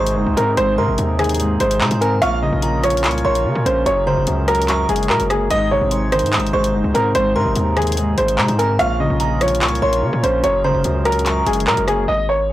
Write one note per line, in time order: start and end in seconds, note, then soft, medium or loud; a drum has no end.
0.00 0.18 G#1 loud
0.00 0.16 G#2 medium
0.00 0.16 C3 medium
0.00 2.19 C3 medium
0.00 0.58 D#3 medium
0.00 0.99 G#3 medium
0.00 2.19 D#4 medium
0.00 2.19 G#4 medium
0.00 0.34 C5 medium
0.00 0.54 C#6 medium
0.07 closed hi-hat medium
0.16 0.26 F#1 medium
0.16 0.56 G#2 medium
0.27 0.36 C2 loud
0.37 0.57 G#2 loud
0.37 1.40 C4 medium
0.37 0.53 A#4 medium
0.37 closed hi-hat medium
0.57 0.79 G#1 loud
0.57 0.97 G#2 loud
0.57 0.73 C5 loud
0.57 closed hi-hat medium
0.78 0.88 G#2 loud
0.78 1.81 C3 medium
0.78 1.17 A#4 medium
0.78 1.77 C6 medium
0.88 0.98 G#1 loud
0.98 1.58 D#2 loud
0.98 1.38 G#2 medium
0.98 closed hi-hat medium
1.19 2.22 D#3 medium
1.19 1.58 G#4 medium
1.19 cross-stick medium
1.19 closed hi-hat soft
1.24 closed hi-hat medium
1.29 closed hi-hat medium
1.35 closed hi-hat medium
1.40 1.79 G#2 medium
1.40 closed hi-hat medium
1.60 1.82 G#1 loud
1.60 2.22 G#3 loud
1.60 1.99 C5 medium
1.60 closed hi-hat medium
1.71 closed hi-hat medium
1.81 2.22 G#2 medium
1.81 1.91 C3 medium
1.81 2.00 A#5 medium
1.81 clap loud
1.91 2.21 G#2 loud
1.91 closed hi-hat medium
2.01 2.22 C4 medium
2.01 2.17 A#4 medium
2.01 2.21 G#5 medium
2.01 closed hi-hat medium
2.22 2.51 A#1 loud
2.22 2.61 A#2 medium
2.22 5.47 C#4 medium
2.22 3.85 F4 medium
2.22 5.47 A#4 medium
2.22 2.38 F5 loud
2.22 2.61 C#6 loud
2.22 closed hi-hat medium
2.43 3.45 C#3 medium
2.43 2.81 D#5 medium
2.53 3.06 A#1 loud
2.62 3.03 A#2 medium
2.62 3.02 A#5 medium
2.62 closed hi-hat medium
2.83 3.86 F3 medium
2.83 3.22 C#5 medium
2.83 cross-stick medium
2.83 closed hi-hat medium
2.90 closed hi-hat medium
2.97 closed hi-hat medium
3.04 3.24 C2 loud
3.04 3.44 A#2 medium
3.04 3.24 C#6 medium
3.04 clap loud
3.04 closed hi-hat medium
3.11 closed hi-hat medium
3.18 closed hi-hat soft
3.25 3.47 A#1 loud
3.25 3.86 A#3 medium
3.25 3.63 C#5 loud
3.25 3.83 C6 loud
3.35 closed hi-hat medium
3.45 3.86 A#2 medium
3.45 3.55 C#3 loud
3.55 3.65 A#2 loud
3.66 3.85 A#1 loud
3.66 3.86 C#4 medium
3.66 3.82 C5 medium
3.66 closed hi-hat medium
3.86 4.16 F#1 loud
3.86 4.26 F#2 medium
3.86 5.49 F#3 medium
3.86 8.75 G#4 medium
3.86 4.02 C#5 loud
3.86 closed hi-hat medium
4.07 5.10 C#3 medium
4.07 4.45 C5 medium
4.07 4.65 A#5 medium
4.17 4.27 F1 loud
4.27 4.87 C#2 loud
4.27 4.67 F#2 medium
4.27 closed hi-hat medium
4.48 5.51 F#3 medium
4.48 4.86 A#4 medium
4.48 cross-stick medium
4.48 closed hi-hat medium
4.55 closed hi-hat medium
4.62 closed hi-hat medium
4.68 5.08 F#2 medium
4.68 5.47 C#6 loud
4.68 clap medium
4.68 closed hi-hat medium
4.89 5.11 F#1 loud
4.89 5.51 G#3 medium
4.89 5.05 G#4 medium
4.89 closed hi-hat medium
4.96 closed hi-hat medium
5.03 closed hi-hat medium
5.10 5.51 F#2 medium
5.10 5.19 A#2 loud
5.10 5.26 A#4 medium
5.10 clap loud
5.20 5.49 F#1 loud
5.20 closed hi-hat medium
5.30 5.51 A#3 medium
5.30 5.46 G#4 medium
5.30 cross-stick loud
5.30 closed hi-hat medium
5.51 5.80 G#1 loud
5.51 5.90 G#2 medium
5.51 8.76 C3 medium
5.51 8.76 D#4 medium
5.51 5.66 D#5 loud
5.51 5.89 D#6 loud
5.51 closed hi-hat medium
5.71 6.74 C3 medium
5.71 6.10 C#5 medium
5.81 6.24 G#1 loud
5.91 6.32 G#2 medium
5.91 6.30 C6 medium
5.91 closed hi-hat medium
6.12 7.15 D#3 medium
6.12 6.51 C5 medium
6.12 cross-stick medium
6.12 closed hi-hat medium
6.19 6.39 G#2 loud
6.19 closed hi-hat medium
6.26 closed hi-hat medium
6.33 6.73 G#2 medium
6.33 6.52 D#6 medium
6.33 clap loud
6.33 closed hi-hat medium
6.38 6.53 G#1 loud
6.38 closed hi-hat medium
6.47 closed hi-hat soft
6.53 6.75 G#1 loud
6.53 7.56 G#3 medium
6.53 6.92 C5 medium
6.53 7.11 C#6 medium
6.64 closed hi-hat medium
6.74 6.84 F#1 loud
6.74 7.13 G#2 medium
6.84 6.94 C2 loud
6.94 7.14 G#2 loud
6.94 7.97 C4 medium
6.94 7.10 A#4 medium
6.94 closed hi-hat medium
7.15 7.37 G#1 loud
7.15 7.55 G#2 medium
7.15 7.31 C5 loud
7.15 closed hi-hat medium
7.36 7.45 G#2 loud
7.36 8.38 C3 medium
7.36 7.74 A#4 medium
7.36 8.34 C6 medium
7.46 7.55 G#1 loud
7.56 8.15 D#2 loud
7.56 7.96 G#2 medium
7.56 closed hi-hat medium
7.76 8.79 D#3 medium
7.76 8.15 G#4 medium
7.76 cross-stick medium
7.76 closed hi-hat soft
7.82 closed hi-hat medium
7.87 closed hi-hat medium
7.92 closed hi-hat medium
7.97 8.37 G#2 medium
7.97 closed hi-hat medium
8.18 8.40 G#1 loud
8.18 8.79 G#3 medium
8.18 8.56 C5 medium
8.18 closed hi-hat medium
8.28 closed hi-hat medium
8.38 8.79 G#2 medium
8.38 8.48 C3 loud
8.38 8.58 A#5 medium
8.38 clap loud
8.48 8.78 G#2 loud
8.48 closed hi-hat medium
8.59 8.79 C4 medium
8.59 8.75 A#4 medium
8.59 8.78 G#5 medium
8.59 closed hi-hat medium
8.79 9.09 A#1 loud
8.79 9.19 A#2 medium
8.79 12.05 C#4 medium
8.79 10.42 F4 medium
8.79 12.05 A#4 medium
8.79 8.95 F5 loud
8.79 9.18 C#6 loud
8.79 closed hi-hat medium
9.00 10.03 C#3 medium
9.00 9.39 D#5 medium
9.10 9.63 A#1 loud
9.20 9.60 A#2 medium
9.20 9.59 A#5 medium
9.20 closed hi-hat medium
9.41 10.44 F3 medium
9.41 9.80 C#5 medium
9.41 cross-stick medium
9.41 closed hi-hat medium
9.48 closed hi-hat medium
9.55 closed hi-hat medium
9.62 9.81 C2 loud
9.62 10.01 A#2 medium
9.62 9.81 C#6 loud
9.62 clap loud
9.62 closed hi-hat medium
9.68 closed hi-hat medium
9.75 closed hi-hat soft
9.82 10.04 A#1 loud
9.82 10.44 A#3 medium
9.82 10.21 C#5 loud
9.82 10.40 C6 medium
9.93 closed hi-hat medium
10.03 10.44 A#2 medium
10.03 10.12 C#3 medium
10.13 10.23 A#2 loud
10.23 10.43 A#1 loud
10.23 10.44 C#4 loud
10.23 10.39 C5 medium
10.23 closed hi-hat medium
10.44 10.73 F#1 loud
10.44 10.83 F#2 medium
10.44 12.07 F#3 medium
10.44 12.07 G#4 medium
10.44 10.59 C#5 loud
10.44 closed hi-hat medium
10.64 11.67 C#3 medium
10.64 11.03 C5 medium
10.64 11.22 A#5 medium
10.75 10.84 F1 loud
10.84 11.44 C#2 loud
10.84 11.24 F#2 medium
10.84 closed hi-hat medium
11.05 12.08 F#3 medium
11.05 11.44 A#4 medium
11.05 cross-stick medium
11.05 closed hi-hat medium
11.12 closed hi-hat medium
11.19 closed hi-hat medium
11.26 11.66 F#2 medium
11.26 12.04 C#6 medium
11.26 clap medium
11.26 closed hi-hat medium
11.46 11.69 F#1 loud
11.46 12.08 G#3 medium
11.46 11.62 G#4 medium
11.46 closed hi-hat medium
11.53 closed hi-hat medium
11.60 closed hi-hat medium
11.67 12.08 F#2 medium
11.67 11.77 A#2 loud
11.67 11.83 A#4 medium
11.67 clap loud
11.77 12.07 F#1 loud
11.77 closed hi-hat medium
11.88 12.08 A#3 medium
11.88 12.04 G#4 medium
11.88 cross-stick loud
11.88 closed hi-hat medium
12.08 12.53 G#1 loud
12.08 12.24 D#5 loud
12.29 12.53 C#5 medium